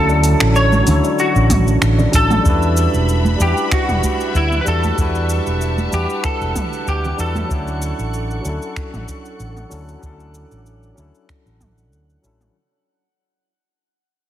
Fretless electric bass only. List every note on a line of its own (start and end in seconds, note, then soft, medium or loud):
0.00 0.33 D2 loud
0.41 0.81 A1 medium
0.87 0.99 D2 medium
1.35 1.75 A1 medium
1.82 2.05 A1 medium
2.14 2.37 A1 loud
2.45 2.86 E2 medium
2.94 3.33 E1 medium
3.40 3.52 E2 medium
3.88 3.99 E1 medium
4.35 4.58 D2 medium
4.66 4.90 E2 medium
4.98 5.39 E2 medium
5.47 5.86 E1 medium
5.93 6.05 E2 medium
6.41 6.51 E1 medium
6.87 7.10 D2 medium
7.19 7.42 E2 loud
7.50 7.91 D2 medium
7.99 8.38 A1 medium
8.45 8.57 D2 medium
8.93 9.04 A1 medium
9.40 9.63 A1 medium
9.71 9.95 D2 medium
10.03 10.44 D2 medium
10.51 10.91 A1 medium
10.98 11.10 D2 medium
11.46 11.92 A1 medium
11.92 12.16 D2 medium
12.24 12.47 A1 medium